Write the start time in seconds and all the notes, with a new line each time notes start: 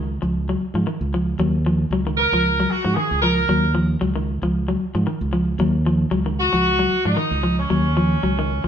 Already playing: C#2 D#3
0.22 C#2 F3
0.49 F#3
0.60 muted fingered electric bass stroke
0.74 G#2 F3
0.87 D#3
1.01 C#2
1.14 F3
1.39 D#2 F#3
1.66 F3
1.90 C#2 F#3
2.07 D#3
2.17 A#4
2.32 C#2 F3
2.60 F#3
2.69 F#4, muted fingered electric bass stroke
2.85 G#2 F3
2.94 D#3 G#4
3.11 C#2
3.22 F3 A#4
3.49 D#2 F#3
3.75 F3
4.01 C#2 F#3
4.16 D#3
4.42 C#2 F3
4.68 F#3
4.80 muted fingered electric bass stroke
4.95 G#2 F3
5.07 D#3
5.21 C#2
5.33 F3
5.59 D#2 F#3
5.86 F3
6.11 C#2 F#3
6.26 D#3
6.38 F#4
6.53 C#2 F3
6.79 F#3
7.05 G#2 F3 D#4
7.17 D#3
7.31 C#2
7.43 F3
7.58 C#4
7.70 D#2 F#3
7.97 F3
8.23 C#2 F#3
8.39 D#3
8.64 C#2 F3